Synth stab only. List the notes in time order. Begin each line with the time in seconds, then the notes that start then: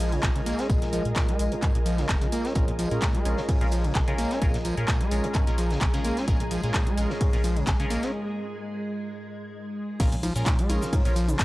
2.56 C#4 F4 G#4 A#4
2.91 C#4 F4 G#4 A#4
3.25 C#4 F4 G#4 A#4
3.61 C#4 F4 G#4 A#4
4.08 C#4 F4 G#4 A#4
4.42 C#4 F4 G#4 A#4
4.77 C#4 F4 G#4 A#4
5.11 C#4 F4 G#4 A#4
5.47 C#4 F4 G#4 A#4
5.94 C#4 F4 G#4 A#4
6.28 C#4 F4 G#4 A#4
6.63 C#4 F4 G#4 A#4
6.97 C#4 F4 G#4 A#4
7.33 C#4 F4 G#4 A#4
7.80 C#4 F4 G#4 A#4
10.00 C#4 F4 G#4 A#4
10.36 C#4 F4 G#4 A#4
10.70 C#4 F4 G#4 A#4
11.05 C#4 F4 G#4 A#4